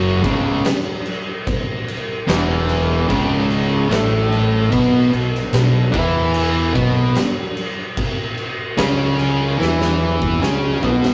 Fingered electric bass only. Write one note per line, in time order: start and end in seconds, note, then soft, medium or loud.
0.00 0.20 F#1 loud
0.25 0.62 C#1 loud
2.28 3.05 E1 loud
3.10 3.87 C#1 loud
3.91 4.68 A1 medium
4.73 5.10 B1 medium
5.13 5.50 B1 medium
5.53 5.91 B1 medium
5.94 6.71 E2 loud
6.76 7.13 B1 loud
8.79 9.56 C#2 loud
9.60 10.38 E2 loud
10.42 10.80 C#2 loud
10.83 11.14 B1 loud